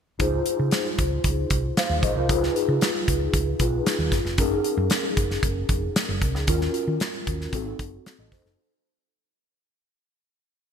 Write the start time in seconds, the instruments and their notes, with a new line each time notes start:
0.19 fingered electric bass C#2, tine electric piano D#4 F4 G#4 C5, kick, closed hi-hat
0.46 closed hi-hat
0.59 fingered electric bass C#3
0.71 snare, closed hi-hat
0.98 fingered electric bass C#2, kick, closed hi-hat
1.24 fingered electric bass C#2, kick, closed hi-hat
1.50 fingered electric bass C2, kick, closed hi-hat
1.77 tine electric piano C5 F5, snare, closed hi-hat
1.90 fingered electric bass D#2
2.03 fingered electric bass A#1, tine electric piano A#4 D#5, kick, closed hi-hat
2.16 fingered electric bass C2, tine electric piano F4 C5
2.29 fingered electric bass C#2, tine electric piano D#4 F4 G#4 A#4, kick, closed hi-hat
2.37 tine electric piano B4
2.43 snare
2.56 closed hi-hat
2.68 fingered electric bass C#3
2.81 snare, closed hi-hat
3.08 fingered electric bass C#2, kick, closed hi-hat
3.33 fingered electric bass C#2, kick, closed hi-hat
3.60 fingered electric bass B1, tine electric piano D#4 F4 G#4 B4, kick, closed hi-hat
3.86 snare, closed hi-hat
3.99 fingered electric bass D#2
4.12 fingered electric bass F#1, kick, snare, closed hi-hat
4.25 fingered electric bass F1, snare
4.38 fingered electric bass F#1, tine electric piano C#4 D#4 G#4 A#4, kick, closed hi-hat
4.64 closed hi-hat
4.77 fingered electric bass F#2
4.90 snare, closed hi-hat
5.17 fingered electric bass F#1, kick, closed hi-hat
5.31 snare
5.43 fingered electric bass F#1, kick, closed hi-hat
5.69 fingered electric bass F1, kick, closed hi-hat
5.96 snare, closed hi-hat
6.09 fingered electric bass F#1
6.21 fingered electric bass C2, kick, closed hi-hat
6.34 fingered electric bass C#2, snare
6.47 fingered electric bass D#2, tine electric piano C#4 F4 F#4 A#4, kick, closed hi-hat
6.61 snare
6.74 closed hi-hat
6.87 fingered electric bass D#3
7.00 snare, closed hi-hat
7.27 fingered electric bass D#2, kick, closed hi-hat
7.41 snare
7.52 fingered electric bass G#1, tine electric piano C4 D#4 F#4 A4, kick, closed hi-hat
7.79 fingered electric bass F#1, kick, closed hi-hat
8.06 snare, closed hi-hat
8.19 fingered electric bass A1, tine electric piano A4 D#5
8.32 tine electric piano F#4 C5, kick, snare, open hi-hat
8.45 fingered electric bass F#1, tine electric piano D#4 A4, snare